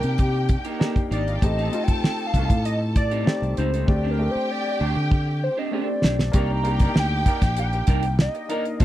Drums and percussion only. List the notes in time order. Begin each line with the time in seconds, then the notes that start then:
0.03 closed hi-hat
0.18 kick, closed hi-hat
0.49 kick, closed hi-hat
0.65 closed hi-hat
0.81 snare
0.96 kick, closed hi-hat
1.12 closed hi-hat
1.28 closed hi-hat
1.42 kick, closed hi-hat
1.59 closed hi-hat
1.73 closed hi-hat
1.88 kick, closed hi-hat
2.04 snare
2.19 closed hi-hat
2.34 kick, closed hi-hat
2.50 kick, closed hi-hat
2.65 closed hi-hat
2.96 kick, closed hi-hat
3.11 closed hi-hat
3.27 snare
3.43 closed hi-hat
3.57 closed hi-hat
3.74 closed hi-hat
3.88 kick
5.11 kick
6.04 snare
6.19 snare
6.33 kick, closed hi-hat
6.65 closed hi-hat
6.80 kick, closed hi-hat
6.96 snare
7.26 kick, closed hi-hat
7.42 kick, snare, closed hi-hat
7.57 closed hi-hat
7.73 closed hi-hat
7.87 kick, closed hi-hat
8.03 closed hi-hat
8.19 snare
8.35 closed hi-hat
8.50 closed hi-hat
8.65 closed hi-hat
8.80 kick, closed hi-hat